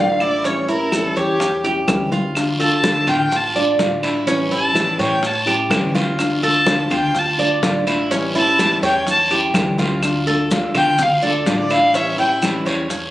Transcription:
Already playing: upright bass A1, nylon-string guitar D3 A3 D4, cuban tres D5
0.00 nylon-string guitar F4, violin F5
0.20 nylon-string guitar A3 D4 F4, cuban tres E4, violin D5, high bongo, high conga, claves, maracas
0.44 nylon-string guitar E3 G3 C#4 E4, cuban tres C#4, violin C#5, high bongo, high conga, maracas
0.68 nylon-string guitar G3 C#4 E4, cuban tres E4, violin A#4, high conga, maracas
0.92 nylon-string guitar E3 G3 C#4 E4, violin A4, high bongo, high conga, claves, maracas
1.16 upright bass E2, violin G4, cuban tres C#5, high bongo, maracas
1.40 muted nylon-string guitar stroke, high bongo, high conga, maracas
1.64 nylon-string guitar G3 C#4 E4, cuban tres G4, high bongo, high conga, maracas
1.87 upright bass D2, nylon-string guitar E3 G3 C#4 E4, high bongo, low bongo, high conga, claves, maracas
2.12 nylon-string guitar E4, cuban tres F4, high conga, maracas
2.35 nylon-string guitar D3 A3 D4 F4, high bongo, high conga, long guiro, claves, maracas
2.59 nylon-string guitar A3 D4 F4, cuban tres A4, violin A5, high conga, maracas
2.83 nylon-string guitar D3 A3 D4 F4, high bongo, high conga, short guiro, maracas
3.07 upright bass A1, cuban tres F4, violin G5, low conga, short guiro, claves, maracas
3.31 muted nylon-string guitar stroke, high bongo, high conga, long guiro, maracas
3.36 violin A5
3.55 nylon-string guitar A3 D4 F4, cuban tres D5, high bongo, high conga, maracas
3.78 upright bass A1, nylon-string guitar D3 A3 D4 F4, high bongo, low bongo, high conga, short guiro, maracas
4.03 nylon-string guitar A3 D4 F4, cuban tres E4, high bongo, high conga, short guiro, claves, maracas
4.26 nylon-string guitar E3 G3 C#4 E4, cuban tres C#4, high bongo, high conga, long guiro, maracas
4.50 nylon-string guitar G3 C#4 E4, cuban tres E4, violin A5, high conga, maracas
4.74 nylon-string guitar E3 G3 C#4 E4, high bongo, high conga, short guiro, claves, maracas
4.99 upright bass A2, cuban tres C#5, violin G5, high bongo, short guiro, maracas
5.22 muted nylon-string guitar stroke, high bongo, high conga, long guiro, maracas
5.26 violin A5
5.46 nylon-string guitar G3 C#4 E4, cuban tres G4, high bongo, high conga, maracas
5.69 upright bass D2, nylon-string guitar E3 G3 C#4 E4, high bongo, low bongo, high conga, short guiro, claves, maracas
5.95 nylon-string guitar G3 C#4 E4, cuban tres F4, high conga, short guiro, maracas
6.18 nylon-string guitar D3 A3 D4 F4, high bongo, high conga, long guiro, claves, maracas
6.42 nylon-string guitar A3 D4 F4, cuban tres A4, violin A5, high conga, maracas
6.66 nylon-string guitar D3 A3 D4 F4, high bongo, high conga, short guiro, maracas
6.90 upright bass D2, cuban tres F4, violin G5, high bongo, low conga, short guiro, claves, maracas
7.14 muted nylon-string guitar stroke, high bongo, high conga, long guiro, maracas
7.19 violin A5
7.38 nylon-string guitar A3 D4 F4, cuban tres D5, high bongo, high conga, maracas
7.62 upright bass A1, nylon-string guitar D3 A3 D4 F4, high bongo, low bongo, high conga, short guiro, maracas
7.87 nylon-string guitar A3 D4 F4, cuban tres E4, high bongo, high conga, short guiro, claves, maracas
8.11 nylon-string guitar E3 G3 C#4 E4, cuban tres C#4, high bongo, high conga, long guiro, maracas
8.35 nylon-string guitar G3 C#4 E4, cuban tres E4, violin A5, high conga, maracas
8.59 nylon-string guitar E3 G3 C#4 E4, high bongo, high conga, short guiro, claves, maracas
8.82 upright bass E2, cuban tres C#5, violin G5, high bongo, short guiro, maracas
9.07 violin A5, muted nylon-string guitar stroke, high bongo, high conga, long guiro, maracas
9.31 nylon-string guitar G3 C#4 E4, cuban tres G4, high bongo, high conga, maracas
9.54 upright bass D2, nylon-string guitar E3 G3 C#4 E4, high bongo, low bongo, high conga, short guiro, claves, maracas
9.78 nylon-string guitar G3 C#4 E4, cuban tres F4, high conga, short guiro, maracas
10.03 nylon-string guitar D3 A3 D4 F4, high bongo, high conga, long guiro, claves, maracas
10.27 nylon-string guitar A3 D4 F4, cuban tres A4, high conga, maracas
10.51 nylon-string guitar D3 A3 D4 F4, high bongo, high conga, short guiro, maracas
10.74 upright bass D2, cuban tres F4, violin G5, high bongo, low conga, short guiro, claves, maracas
10.98 muted nylon-string guitar stroke, high bongo, high conga, low conga, long guiro, maracas
11.03 violin F5
11.22 nylon-string guitar A3 D4 F4, violin A4, cuban tres D5, high bongo, high conga, maracas
11.46 upright bass A1, nylon-string guitar D3 A3 D4 F4, violin D5, high bongo, low bongo, high conga, short guiro, maracas
11.70 nylon-string guitar A3 D4 F4, cuban tres E4, violin F5, high bongo, high conga, short guiro, claves, maracas
11.93 nylon-string guitar E3 G3 C#4 E4, cuban tres C#4, violin E5, high bongo, high conga, long guiro, maracas
12.18 nylon-string guitar G3 C#4 E4, cuban tres E4, violin G5, high conga, maracas
12.41 nylon-string guitar E3 G3 C#4 E4, high bongo, high conga, short guiro, claves, maracas
12.65 upright bass E2, cuban tres C#5, high bongo, short guiro, maracas
12.90 muted nylon-string guitar stroke, high bongo, high conga, long guiro, maracas

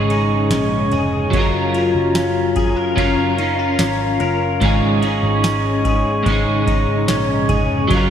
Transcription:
Already playing: picked electric bass G#1, clean electric guitar G#2 C#3 G#3 C#4 D#4 G#4, glass harmonica G#4 C#5 D#5 C#6
0.10 clean electric guitar D#4, ride
0.50 picked electric bass A#1, clean electric guitar C#4, snare, ride, tambourine
0.92 picked electric bass F1, clean electric guitar G#4, ride
1.30 picked electric bass F#1, clean electric guitar F#3 C#4, glass harmonica F4 F5 A#5, kick, ride
1.37 clean electric guitar F4 A#4
1.74 clean electric guitar F4, ride
1.95 picked electric bass F#1
2.15 clean electric guitar C#4, snare, ride, tambourine
2.56 clean electric guitar G#4, kick, ride
2.76 clean electric guitar A#4
2.96 picked electric bass F#1, clean electric guitar F#3 C#4 F4, kick, ride
3.00 clean electric guitar A#4
3.36 clean electric guitar D#4 F4 A#4, ride
3.42 clean electric guitar C#4
3.59 clean electric guitar F4
3.79 picked electric bass G#1, clean electric guitar C#4, snare, ride, tambourine
4.20 picked electric bass F#1, clean electric guitar A#4, ride
4.61 picked electric bass G#1, clean electric guitar G#2 C#3 G#3 C#4 D#4 G#4, glass harmonica G#4 D#5 C#6, kick, ride
5.02 clean electric guitar C#4 D#4 G#4, ride
5.07 clean electric guitar G#3
5.23 picked electric bass G#1
5.44 clean electric guitar C#4, snare, ride, tambourine
5.85 clean electric guitar G#4, kick, ride
6.23 picked electric bass G#1, clean electric guitar G#2 C#3 G#3, kick, ride
6.27 clean electric guitar G#3 C#4 D#4
6.32 clean electric guitar G#4
6.67 clean electric guitar D#4, kick, ride
7.08 picked electric bass A#1, clean electric guitar C#4, snare, ride, tambourine
7.49 picked electric bass F1, clean electric guitar G#4, kick, ride
7.87 picked electric bass F#1, clean electric guitar F#3 C#4, glass harmonica F4 C#5 F5 A#5, kick, ride
7.94 clean electric guitar F4 A#4

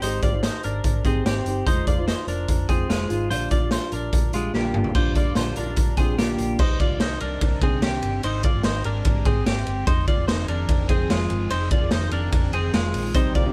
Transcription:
0.02 fingered electric bass G#1, steel-string acoustic guitar G#3 C4 D#4 G4 C5, clean electric guitar D#4 C5, closed hi-hat
0.22 fingered electric bass G#1, clean electric guitar F4 D5, kick, closed hi-hat
0.32 steel-string acoustic guitar D#4 G4 C5
0.43 clean electric guitar D#4 C5, snare, closed hi-hat
0.63 fingered electric bass G#1, clean electric guitar D4 A#4, closed hi-hat
0.84 fingered electric bass G#1, kick, closed hi-hat
1.05 fingered electric bass G#1, steel-string acoustic guitar C4 D#4 G4 C5, clean electric guitar C4 G#4, kick, closed hi-hat
1.25 fingered electric bass G#1, steel-string acoustic guitar C4 D#4 G4 C5, clean electric guitar C4 G4, snare, closed hi-hat
1.46 fingered electric bass G1, steel-string acoustic guitar C4 D#4 G4 C5, closed hi-hat
1.67 fingered electric bass F1, steel-string acoustic guitar F3 G#3 D#4 F4 C5, clean electric guitar D#4 C5, kick, closed hi-hat
1.87 fingered electric bass F1, clean electric guitar F4 D5, kick, closed hi-hat
1.99 steel-string acoustic guitar D#4 F4 C5
2.08 clean electric guitar D#4 C5, snare, closed hi-hat
2.27 fingered electric bass F1, clean electric guitar D4 A#4, closed hi-hat
2.48 fingered electric bass F1, kick, closed hi-hat
2.69 steel-string acoustic guitar G#3 D#4 F4 C5, clean electric guitar C4 G#4, kick, closed hi-hat
2.89 fingered electric bass F1, steel-string acoustic guitar G#3 D#4 F4 C5, clean electric guitar G#3 F4, snare, closed hi-hat
3.10 fingered electric bass G#1, steel-string acoustic guitar G#3 D#4 F4 C5, closed hi-hat
3.30 fingered electric bass A#1, steel-string acoustic guitar A#2 D3 G3 D4 F4, clean electric guitar F4 C5, closed hi-hat
3.51 fingered electric bass A#1, clean electric guitar F4 D5, kick, closed hi-hat
3.60 steel-string acoustic guitar G3 D4 F4
3.71 clean electric guitar F4 C5, snare, closed hi-hat
3.92 fingered electric bass A#1, clean electric guitar D4 A#4, closed hi-hat
4.13 fingered electric bass A#1, kick, closed hi-hat
4.33 fingered electric bass A#1, steel-string acoustic guitar D3 G3 D4 F4, clean electric guitar G#3 F4, closed hi-hat
4.54 fingered electric bass A#1, steel-string acoustic guitar D3 G3 D4 F4, clean electric guitar A#3 G4, snare
4.74 fingered electric bass G#1, steel-string acoustic guitar D3 G3 D4 F4, mid tom
4.84 floor tom
4.95 fingered electric bass A#1, steel-string acoustic guitar A#2 D3 G3 D4 F4, clean electric guitar F4 C5, kick, crash
5.15 clean electric guitar F4 D5, kick, closed hi-hat
5.35 fingered electric bass A#1, steel-string acoustic guitar A#2 D3 G3 D4 F4, clean electric guitar F4 C5, snare, closed hi-hat
5.56 fingered electric bass A#1, clean electric guitar D4 A#4, closed hi-hat
5.67 steel-string acoustic guitar G3 D4 F4
5.76 fingered electric bass A#1, kick, closed hi-hat
5.97 fingered electric bass A#1, steel-string acoustic guitar D3 G3 D4 F4, clean electric guitar C4 G#4, kick, closed hi-hat
6.18 fingered electric bass A#1, steel-string acoustic guitar A#2 D3 G3 D4 F4, clean electric guitar A#3 G4, snare, closed hi-hat
6.38 fingered electric bass A#1, closed hi-hat
6.59 fingered electric bass C2, string machine C3 D#3 C4 D4, clean electric guitar D#4 C5, kick, crash
6.80 clean electric guitar F4 D5, kick, ride
6.90 fingered electric bass C2
7.00 fingered electric bass C2, clean electric guitar D#4 C5, snare, ride
7.20 fingered electric bass C2, clean electric guitar D4 A#4, ride
7.41 fingered electric bass C2, kick, ride
7.62 fingered electric bass C2, clean electric guitar C4 G#4, kick, ride
7.82 fingered electric bass C2, clean electric guitar C4 G4, snare, ride
8.02 fingered electric bass G1, ride
8.22 fingered electric bass G#1, string machine G#3 G4, clean electric guitar D#4 C5, ride
8.43 clean electric guitar F4 D5, kick, ride
8.55 fingered electric bass G#1
8.63 fingered electric bass G#1, clean electric guitar D#4 C5, snare, ride
8.84 fingered electric bass G#1, clean electric guitar D4 A#4, ride
9.05 fingered electric bass G#1, kick, ride
9.25 fingered electric bass G#1, clean electric guitar C4 G#4, kick, ride
9.46 fingered electric bass G#1, clean electric guitar C4 G4, snare, ride
9.67 fingered electric bass G1, ride
9.87 fingered electric bass F1, string machine D#3 F3 G#4, clean electric guitar D#4 C5, kick, ride
10.08 clean electric guitar F4 D5, kick, ride
10.18 fingered electric bass F1
10.28 fingered electric bass F1, clean electric guitar D#4 C5, snare, ride
10.48 fingered electric bass F1, clean electric guitar D4 A#4, ride
10.69 fingered electric bass F1, kick, ride
10.89 fingered electric bass F1, clean electric guitar C4 G#4, kick, ride
11.10 fingered electric bass F1, clean electric guitar G#3 F4, snare, ride
11.30 fingered electric bass G1, ride
11.50 fingered electric bass F1, clean electric guitar D#4 C5, ride
11.71 clean electric guitar F4 D5, kick, ride
11.82 fingered electric bass F1
11.91 fingered electric bass F1, clean electric guitar D#4 C5, snare, ride
12.11 fingered electric bass F1, clean electric guitar D4 A#4, ride
12.32 fingered electric bass F1, kick, ride
12.53 fingered electric bass F1, clean electric guitar C4 G#4, ride
12.74 fingered electric bass F1, clean electric guitar G#3 F4, snare, ride
12.94 fingered electric bass A#1, open hi-hat, ride
13.14 fingered electric bass C2, steel-string acoustic guitar C3 G3 C4 D#4 G4 D5, string machine C3 D5, clean electric guitar D#4 C5, kick, hi-hat pedal, ride
13.35 clean electric guitar F4 D5, kick, ride
13.45 fingered electric bass C2, steel-string acoustic guitar C3 G3 C4 D#4 G4 D5

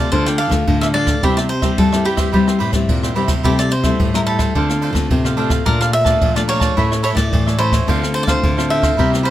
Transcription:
Already playing: nylon-string guitar C3, cavaquinho C5 F5
0.12 nylon-string guitar D3 A3 D4 F4, cavaquinho D4 A4 C5 D5 F5, kick, ride
0.26 cavaquinho A4 D5 F5 G5, cross-stick
0.38 cavaquinho D4 A4 D5 F5, ride
0.50 nylon-string guitar D3 A3 D4 F4, muted cavaquinho stroke, kick, cross-stick, ride
0.67 nylon-string guitar A2 D3, kick, ride
0.81 cavaquinho A4 D5 E5 F5, cross-stick
0.94 nylon-string guitar A3 D4 F4, cavaquinho D4 A4 D5 F5, ride
1.07 cavaquinho A4 D5 F5, kick, cross-stick, ride
1.23 nylon-string guitar C3 G3 C4 E4, cavaquinho E4 G4 C5 E5, kick, ride
1.37 cavaquinho G4 D5 E5, cross-stick
1.49 cavaquinho C5, muted cavaquinho stroke, ride
1.62 nylon-string guitar G3 C4 E4, cavaquinho G4 C5 E5, kick, cross-stick, ride
1.78 nylon-string guitar G2 G3, cavaquinho A4, kick, ride
1.92 nylon-string guitar G3 C4 E4, cavaquinho G4 C5 E5, cross-stick
2.04 cavaquinho E4 G4 C5 E5, ride
2.17 cavaquinho G4 C5 E5, kick, cross-stick, ride
2.32 nylon-string guitar C3 G3 C4 E4, cavaquinho E4 G4 C5 E5, kick, ride
2.47 cavaquinho G4 C5 E5, cross-stick
2.59 nylon-string guitar A2, cavaquinho E4 G4 C5 E5, ride
2.72 nylon-string guitar G3 C4 E4, muted cavaquinho stroke, kick, cross-stick, ride
2.89 nylon-string guitar G2 A#2, kick, ride
3.03 cavaquinho G4 C5 E5, cross-stick
3.15 nylon-string guitar C3 G3 C4 E4, cavaquinho E4 G4 C5 E5, ride
3.27 cavaquinho G4 C5 E5, kick, cross-stick, ride
3.43 nylon-string guitar C3 G3 A3 E4, cavaquinho E4 G4 A4 C5 E5, kick, ride
3.59 cavaquinho A4 C5 D5 E5, cross-stick
3.71 cavaquinho C5, muted cavaquinho stroke, ride
3.83 nylon-string guitar G3 A3 E4, cavaquinho A4 C5 E5, kick, cross-stick, ride
3.99 nylon-string guitar G2 A2, kick, ride
4.14 nylon-string guitar G3 A3 E4, cavaquinho A4 A#4 C5 E5, cross-stick
4.26 cavaquinho E4 A4 C5 E5, ride
4.39 cavaquinho A4 C5 E5, kick, cross-stick, ride
4.55 nylon-string guitar D3 A3 C4 F4, cavaquinho D4 A4 C5 F5, kick, ride
4.69 cavaquinho A4 C5 F5, cross-stick
4.81 cavaquinho D4 A4 C5 F5, ride
4.93 nylon-string guitar D3 A3 C4 F4, muted cavaquinho stroke, kick, cross-stick, ride
5.10 nylon-string guitar A2 C3, kick, ride
5.25 cavaquinho A4 C5 F5, cross-stick
5.37 nylon-string guitar A3 C4 F4, cavaquinho D4 A4 C5 F5, ride
5.50 cavaquinho A4 C5 F5, kick, cross-stick, ride
5.65 nylon-string guitar A#2 A3 D4 F4, cavaquinho A#4 D5 F5 A5, kick, ride
5.80 cavaquinho D5 F5 A5, cross-stick
5.93 cavaquinho E5, muted cavaquinho stroke, ride
6.05 nylon-string guitar A3 D4 F4, cavaquinho D5 F5 A5, kick, cross-stick, ride
6.21 nylon-string guitar A#2 F3, kick, ride
6.35 nylon-string guitar A3 D4 F4, cavaquinho D5 F5 A5, cross-stick
6.48 cavaquinho A#4 C#5 D5 F5 A5, ride
6.60 cavaquinho D5 F5 A5, kick, cross-stick, ride
6.76 nylon-string guitar A2 A3 C#4 E4, cavaquinho E4 A4 C#5 E5, kick, ride
6.91 cavaquinho A4 C#5 E5, cross-stick
7.03 cavaquinho E4 A4 C#5 E5, ride
7.15 nylon-string guitar A2 A3 E4, cavaquinho D5, muted cavaquinho stroke, kick, cross-stick, ride
7.32 nylon-string guitar A2 E3, kick, ride
7.46 cavaquinho A4 C#5 E5, cross-stick
7.58 nylon-string guitar A3 C#4 E4, cavaquinho E4 A4 C5 C#5 E5, ride
7.72 cavaquinho A4 C#5 E5, kick, cross-stick, ride
7.87 nylon-string guitar D3 A3 C4 F4, cavaquinho D4 A4 C5 F5, kick, ride
8.02 cavaquinho A4 C5 F5, cross-stick
8.14 cavaquinho C5, muted cavaquinho stroke, ride
8.23 nylon-string guitar A3, cavaquinho D5
8.27 nylon-string guitar C4 F4, cavaquinho A4 C5 F5, kick, cross-stick, ride
8.43 nylon-string guitar A2 D3, kick, ride
8.57 nylon-string guitar A3 C4 F4, cavaquinho A4 C5 F5, cross-stick
8.70 cavaquinho D4 A4 C5 E5 F5, ride
8.82 cavaquinho A4 C5 F5, kick, cross-stick, ride
8.97 nylon-string guitar C3 G3 A#3 E4, cavaquinho E4 A#4 C5 E5, kick, ride
9.12 cavaquinho A#4 C5 E5, cross-stick
9.23 cavaquinho E4 A#4 C5 E5, ride

